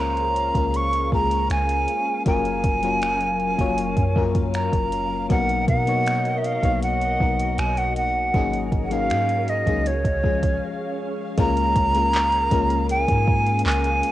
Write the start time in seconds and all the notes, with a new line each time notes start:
Already playing: C#2 G#3 A#3 C#4 F4 G#4 A#4 C5 C#5 F5
0.00 A#5, finger snap
0.17 closed hi-hat
0.36 closed hi-hat
0.55 C#2 G#3 A#3 C#4 F4 A#4, kick, closed hi-hat
0.74 C#6, closed hi-hat
0.93 closed hi-hat
1.12 C#2 G#3 A#3 C#4 F4 G#4 A#5, kick
1.31 closed hi-hat
1.50 C#2 G#5, finger snap, closed hi-hat
1.69 closed hi-hat
1.88 closed hi-hat
2.25 F#1 F#3 A#3 C#4 F4 A#4 G#5, kick, closed hi-hat
2.45 closed hi-hat
2.64 F#1, kick, closed hi-hat
2.83 F#3 A#3 C#4 F4 A#4, closed hi-hat
3.02 finger snap, closed hi-hat
3.21 closed hi-hat
3.40 closed hi-hat
3.59 F#1 F#3 A#3 C#4 F4 C#5, kick, closed hi-hat
3.78 closed hi-hat
3.97 F#2, kick, closed hi-hat
4.16 F#3 A#3 C#4 F4 A#4, kick
4.35 kick, closed hi-hat
4.54 A#5, finger snap, closed hi-hat
4.73 F#1, kick, closed hi-hat
4.92 closed hi-hat
5.29 B1 B2 F#3 A#3 B3 D#4 F#4 A#4 D#5 F#5, kick, closed hi-hat
5.49 closed hi-hat
5.68 B2 F#5, kick, closed hi-hat
5.86 F#3 A#3 B3 D#4 C#5, closed hi-hat
6.06 finger snap, closed hi-hat
6.25 closed hi-hat
6.38 E5
6.44 F5, closed hi-hat
6.63 B1 F#3 A#3 B3 D#4 C#5, kick, closed hi-hat
6.82 F#5, closed hi-hat
7.01 closed hi-hat
7.20 B1 F#3 A#3 B3 D#4 A#4, kick
7.39 closed hi-hat
7.58 B1 G#5, finger snap, closed hi-hat
7.77 F#5, closed hi-hat
7.96 F#5, closed hi-hat
8.34 G#1 F#3 A#3 C#4 D#4 F#4 G#4 A#4, kick, closed hi-hat
8.53 closed hi-hat
8.72 G#1, kick, closed hi-hat
8.85 F#5
8.90 F#3 A#3 C#4 D#4 G#4 F5, closed hi-hat
9.10 G#2, finger snap, closed hi-hat
9.29 closed hi-hat
9.48 D#5, closed hi-hat
9.66 C#2 F#3 A#3 C#4 D#4 G#4, kick, closed hi-hat
9.86 C#5 F5, closed hi-hat
10.05 C#2, kick, closed hi-hat
10.23 F3 G#3 C#4 G#4, kick
10.43 kick, closed hi-hat
11.38 C#2 G#3 A#3 C#4 F4 G#4 A#4 F5 A#5, kick, closed hi-hat
11.57 closed hi-hat
11.76 C#2, kick, closed hi-hat
11.95 G#3 A#3 C#4 F4 A#4, closed hi-hat
12.14 clap, closed hi-hat
12.32 closed hi-hat
12.51 C#2 G#3 A#3 C#4 F4 A#4, kick, closed hi-hat
12.70 closed hi-hat
12.89 G#5, closed hi-hat
13.08 G#2, kick, closed hi-hat
13.28 kick
13.47 closed hi-hat
13.59 closed hi-hat
13.65 C#2 G#5, clap
13.72 closed hi-hat
13.84 closed hi-hat
14.03 closed hi-hat